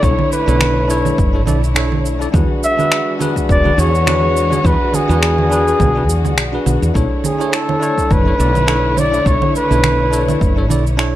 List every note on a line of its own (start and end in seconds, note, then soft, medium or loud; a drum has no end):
0.00 0.13 B1 loud
0.00 2.30 D3 medium
0.00 2.30 A3 medium
0.00 0.43 D4 medium
0.00 2.30 E4 medium
0.00 0.44 E4 medium
0.00 0.44 A4 medium
0.00 2.30 C#5 medium
0.00 0.32 C#5 loud
0.00 kick loud
0.00 shaker soft
0.04 0.45 C#5 medium
0.19 low conga medium
0.32 1.44 B4 loud
0.32 shaker medium
0.46 1.11 B1 loud
0.46 0.86 D4 medium
0.46 0.86 E4 medium
0.46 0.87 A4 medium
0.46 0.87 C#5 medium
0.46 shaker soft
0.61 finger snap loud
0.61 low conga medium
0.61 shaker soft
0.88 1.30 D4 medium
0.88 1.30 E4 medium
0.88 1.31 A4 medium
0.88 1.31 C#5 loud
0.88 shaker medium
1.05 low conga medium
1.05 shaker soft
1.18 1.47 F#1 medium
1.18 kick loud
1.18 shaker soft
1.33 1.40 D4 medium
1.33 1.41 E4 medium
1.33 1.41 A4 medium
1.33 1.41 C#5 medium
1.46 2.26 B1 medium
1.46 1.59 D4 medium
1.46 1.60 E4 medium
1.46 1.60 A4 medium
1.46 1.60 D5 medium
1.46 low conga medium
1.46 shaker medium
1.64 shaker soft
1.75 2.16 D4 medium
1.75 2.17 E4 medium
1.75 2.17 A4 medium
1.75 2.18 C#5 loud
1.75 finger snap loud
1.75 shaker soft
1.92 low conga medium
2.06 shaker medium
2.19 2.26 D4 medium
2.19 2.27 E4 medium
2.19 2.27 A4 medium
2.19 2.28 D5 loud
2.19 shaker soft
2.32 2.44 E2 loud
2.32 6.91 E3 medium
2.32 6.91 G#3 medium
2.32 2.74 D4 medium
2.32 6.91 D4 medium
2.32 2.74 F#4 medium
2.32 6.91 F#4 medium
2.32 2.75 G#4 medium
2.32 2.75 B4 medium
2.32 kick loud
2.32 low conga medium
2.32 shaker soft
2.63 3.17 E5 loud
2.63 shaker medium
2.77 3.17 D4 medium
2.77 3.17 F#4 medium
2.77 3.17 G#4 medium
2.77 3.18 B4 medium
2.77 low conga medium
2.77 shaker soft
2.92 finger snap loud
2.92 shaker soft
3.19 3.61 D4 medium
3.19 3.61 F#4 medium
3.19 3.61 G#4 medium
3.19 3.62 B4 loud
3.19 low conga medium
3.19 shaker medium
3.36 kick medium
3.36 shaker soft
3.49 3.69 E1 medium
3.49 3.81 D5 loud
3.49 kick loud
3.49 shaker soft
3.64 3.71 D4 medium
3.64 3.71 F#4 medium
3.64 3.72 G#4 medium
3.64 3.72 B4 medium
3.64 low conga medium
3.77 4.57 E2 medium
3.77 3.90 D4 medium
3.77 3.90 F#4 medium
3.77 3.91 G#4 medium
3.77 3.91 C#5 medium
3.77 4.68 C#5 loud
3.77 shaker medium
3.95 shaker soft
4.06 4.47 D4 medium
4.06 4.48 F#4 medium
4.06 4.48 G#4 medium
4.06 4.49 B4 loud
4.06 finger snap loud
4.06 low conga medium
4.06 shaker soft
4.37 shaker medium
4.50 4.57 D4 medium
4.50 4.58 F#4 medium
4.50 4.58 G#4 medium
4.50 4.59 C#5 medium
4.50 low conga medium
4.50 shaker soft
4.63 4.75 E2 loud
4.63 5.05 D4 medium
4.63 5.05 F#4 medium
4.63 5.06 G#4 medium
4.63 5.06 B4 medium
4.63 4.97 B4 loud
4.63 kick loud
4.63 shaker soft
4.94 6.67 G#4 loud
4.94 low conga medium
4.94 shaker medium
5.08 5.73 E2 loud
5.08 5.47 D4 medium
5.08 5.48 F#4 medium
5.08 5.48 G#4 medium
5.08 5.48 B4 medium
5.08 shaker soft
5.23 finger snap medium
5.23 shaker soft
5.38 low conga medium
5.50 5.91 D4 loud
5.50 5.92 F#4 medium
5.50 5.92 G#4 medium
5.50 5.93 B4 loud
5.50 shaker medium
5.68 shaker soft
5.80 6.09 B1 medium
5.80 kick loud
5.80 low conga medium
5.80 shaker soft
5.95 6.02 D4 medium
5.95 6.02 F#4 medium
5.95 6.02 G#4 medium
5.95 6.03 B4 medium
6.09 6.37 E2 medium
6.09 shaker medium
6.25 low conga medium
6.25 shaker soft
6.37 6.57 B1 medium
6.37 finger snap loud
6.37 shaker soft
6.52 6.92 D4 medium
6.52 6.92 F#4 medium
6.52 6.92 G#4 medium
6.52 6.93 B4 medium
6.66 6.77 B1 medium
6.66 low conga medium
6.66 shaker medium
6.82 6.91 E2 medium
6.82 shaker soft
6.94 7.05 B1 loud
6.94 11.16 D3 medium
6.94 11.16 A3 medium
6.94 7.36 D4 medium
6.94 7.36 E4 medium
6.94 11.16 E4 medium
6.94 7.36 A4 medium
6.94 11.16 C#5 medium
6.94 7.37 C#5 medium
6.94 kick loud
6.94 shaker soft
7.24 7.56 G#4 medium
7.24 low conga medium
7.24 shaker medium
7.38 7.78 D4 medium
7.38 7.78 E4 medium
7.38 7.79 A4 medium
7.38 7.79 C#5 medium
7.38 shaker soft
7.53 8.14 A4 loud
7.53 finger snap medium
7.53 shaker soft
7.69 low conga medium
7.80 8.22 D4 medium
7.80 8.22 E4 medium
7.80 8.23 A4 medium
7.80 8.23 C#5 loud
7.80 shaker medium
7.98 kick medium
7.98 shaker soft
8.10 8.30 F#1 medium
8.10 9.00 B4 loud
8.10 kick loud
8.10 low conga medium
8.10 shaker soft
8.25 8.32 D4 medium
8.25 8.33 E4 medium
8.25 8.33 A4 medium
8.25 8.34 C#5 medium
8.38 9.19 B1 medium
8.38 8.51 D4 medium
8.38 8.52 E4 medium
8.38 8.52 A4 medium
8.38 8.53 D5 medium
8.38 shaker medium
8.55 low conga medium
8.55 shaker soft
8.67 9.09 D4 medium
8.67 9.09 E4 medium
8.67 9.09 A4 medium
8.67 9.10 C#5 loud
8.67 finger snap medium
8.67 shaker soft
8.97 9.29 D5 loud
8.97 low conga medium
8.97 shaker medium
9.12 9.19 D4 medium
9.12 9.19 E4 medium
9.12 9.20 A4 medium
9.12 9.20 D5 medium
9.12 shaker soft
9.25 9.36 B1 loud
9.25 9.66 D4 medium
9.25 9.67 E4 medium
9.25 9.67 A4 medium
9.25 9.68 C#5 medium
9.25 9.56 C#5 loud
9.25 kick loud
9.25 shaker soft
9.42 low conga medium
9.55 10.67 B4 loud
9.55 shaker medium
9.69 10.34 B1 medium
9.69 10.09 D4 medium
9.69 10.09 E4 medium
9.69 10.10 A4 medium
9.69 10.10 C#5 medium
9.69 shaker soft
9.84 finger snap medium
9.84 low conga medium
9.84 shaker soft
10.11 10.53 D4 medium
10.11 10.53 E4 medium
10.11 10.54 A4 medium
10.11 10.54 C#5 medium
10.11 shaker medium
10.28 low conga medium
10.28 shaker soft
10.41 10.70 F#1 medium
10.41 kick loud
10.41 shaker soft
10.56 10.63 D4 medium
10.56 10.63 E4 medium
10.56 10.64 A4 medium
10.56 10.64 C#5 medium
10.69 11.16 B1 medium
10.69 10.82 D4 medium
10.69 10.83 E4 medium
10.69 10.83 A4 medium
10.69 10.84 D5 medium
10.69 low conga medium
10.69 shaker medium
10.87 shaker soft
10.97 11.16 D4 medium
10.97 11.16 E4 medium
10.97 11.16 A4 medium
10.97 11.16 C#5 loud
10.97 finger snap medium
10.97 shaker soft